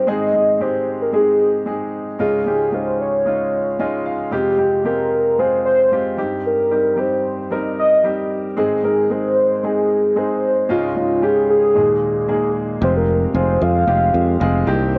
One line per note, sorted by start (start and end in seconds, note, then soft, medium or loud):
0.07 2.16 G#2 soft
0.07 2.16 D#3 medium
0.07 0.28 G#3 medium
0.07 0.28 C4 medium
0.07 0.28 D#4 medium
0.07 0.28 G#4 medium
0.07 0.63 D#5 loud
0.33 0.54 G#3 medium
0.33 0.54 C4 soft
0.33 0.54 D#4 soft
0.33 0.55 G#4 medium
0.60 1.01 G#3 medium
0.60 1.01 C4 soft
0.60 1.01 D#4 medium
0.60 1.02 G4 medium
0.60 1.03 C5 medium
1.02 1.14 A#4 medium
1.12 1.54 G#3 medium
1.12 1.54 C4 medium
1.12 1.54 D#4 medium
1.12 1.54 G#4 medium
1.12 1.90 G#4 medium
1.66 2.07 G#3 medium
1.66 2.07 C4 soft
1.66 2.07 D#4 medium
1.66 2.08 G#4 medium
2.19 4.28 C#2 soft
2.19 4.28 G#2 soft
2.19 2.40 G#3 medium
2.19 2.40 C#4 medium
2.19 2.40 D#4 medium
2.19 2.40 F4 medium
2.19 2.76 G#4 medium
2.46 2.67 G#3 soft
2.46 2.67 C#4 soft
2.46 2.67 D#4 soft
2.46 2.67 G4 medium
2.72 3.13 G#3 medium
2.72 3.14 C#4 soft
2.72 3.14 D#4 medium
2.72 3.14 F4 medium
2.72 3.00 C5 medium
3.01 4.02 C#5 medium
3.25 3.67 G#3 medium
3.25 3.67 C#4 soft
3.25 3.67 D#4 medium
3.25 3.67 F4 medium
3.79 4.20 G#3 medium
3.79 4.20 C#4 medium
3.79 4.20 D#4 medium
3.79 4.20 F4 medium
3.79 4.04 G#5 medium
4.06 4.30 F5 medium
4.31 6.14 F2 soft
4.31 6.14 C3 soft
4.31 4.52 G#3 medium
4.31 4.52 C4 medium
4.31 4.52 F4 medium
4.31 4.53 G4 medium
4.31 4.82 G4 medium
4.58 4.79 G#3 medium
4.58 4.79 C4 soft
4.58 4.79 F4 soft
4.58 4.79 G4 medium
4.84 5.26 G#3 medium
4.84 5.26 C4 medium
4.84 5.26 F4 medium
4.84 5.26 G4 medium
4.84 5.40 A#4 medium
5.39 5.79 G#3 medium
5.39 5.79 C4 medium
5.39 5.80 F4 medium
5.39 5.80 G#4 medium
5.39 5.65 C5 loud
5.65 6.15 C5 medium
5.92 6.18 G#3 medium
5.92 6.16 C4 medium
5.92 6.18 F4 medium
5.92 6.17 G4 medium
6.17 8.26 G2 soft
6.17 6.60 G3 medium
6.17 6.60 C4 medium
6.17 6.60 D#4 medium
6.17 6.61 G4 medium
6.46 7.01 A#4 medium
6.70 6.91 G3 medium
6.70 6.91 C4 soft
6.70 6.91 D#4 soft
6.70 6.92 G4 medium
6.96 7.38 G3 medium
6.96 7.38 C4 medium
6.96 7.38 D#4 soft
6.96 7.38 G4 medium
6.96 7.55 C5 medium
7.51 7.92 G3 medium
7.51 7.92 C4 medium
7.51 7.92 D#4 medium
7.51 7.92 A#4 medium
7.51 7.79 D#5 loud
7.79 8.28 D#5 medium
8.04 8.45 G3 medium
8.04 8.45 C4 medium
8.04 8.45 D#4 medium
8.04 8.45 G4 medium
8.57 10.66 G#2 soft
8.57 10.65 D#3 soft
8.57 8.77 G#3 medium
8.57 8.77 C4 medium
8.57 8.78 D#4 medium
8.57 8.78 G#4 medium
8.57 9.13 G#4 medium
8.83 9.04 G#3 medium
8.83 9.04 C4 medium
8.83 9.04 D#4 medium
8.83 9.04 A#4 medium
9.10 9.51 G#3 medium
9.10 9.51 C4 medium
9.10 9.51 D#4 medium
9.10 9.51 G#4 medium
9.10 9.66 C5 loud
9.63 10.04 G#3 medium
9.63 10.04 C4 medium
9.63 10.04 D#4 medium
9.63 10.05 G#4 medium
9.63 10.20 G#4 loud
10.16 10.57 G#3 medium
10.16 10.57 C4 medium
10.16 10.57 D#4 medium
10.16 10.57 G#4 medium
10.16 10.70 C5 medium
10.69 11.72 C#2 medium
10.69 11.72 G#2 soft
10.69 10.90 G#3 medium
10.69 10.90 C#4 medium
10.69 10.90 D#4 medium
10.69 10.90 F4 medium
10.69 11.25 F4 medium
10.96 11.17 G#3 medium
10.96 11.17 C#4 soft
10.96 11.17 D#4 soft
10.96 11.17 F4 medium
11.22 11.63 G#3 medium
11.22 11.63 C#4 medium
11.22 11.63 D#4 medium
11.22 11.64 G4 medium
11.22 11.50 G#4 medium
11.50 12.52 G#4 medium
11.75 12.78 D#2 medium
11.75 12.78 A#2 medium
11.75 12.16 G#3 medium
11.75 12.16 A#3 medium
11.75 12.17 D#4 medium
11.75 12.17 G#4 medium
12.28 12.69 G#3 medium
12.28 12.69 A#3 medium
12.28 12.69 D#4 medium
12.28 12.70 G#4 medium
12.81 13.25 F1 medium
12.81 13.57 C3 soft
12.81 13.22 G#3 medium
12.81 13.22 C4 medium
12.81 13.23 F4 medium
12.81 13.23 G4 medium
12.81 12.95 C5 medium
12.97 13.33 A#4 medium
13.34 13.56 F1 medium
13.34 13.75 G#3 medium
13.34 13.75 C4 medium
13.34 13.76 F4 medium
13.34 13.76 G#4 medium
13.34 13.64 C5 medium
13.62 13.83 F2 medium
13.62 14.68 F5 loud
13.87 14.09 F1 medium
13.87 14.28 G#3 medium
13.87 14.29 C4 medium
13.87 14.29 F4 medium
13.87 14.29 G4 medium
14.14 14.36 F2 medium
14.40 14.63 F1 loud
14.40 14.67 G#3 medium
14.40 14.65 C4 medium
14.40 14.67 F4 medium
14.40 14.68 G#4 medium
14.66 14.98 C2 medium
14.66 14.98 G2 medium
14.66 14.98 A#3 medium
14.66 14.98 C4 medium
14.66 14.98 D#4 medium
14.66 14.98 G4 medium
14.95 14.98 C5 medium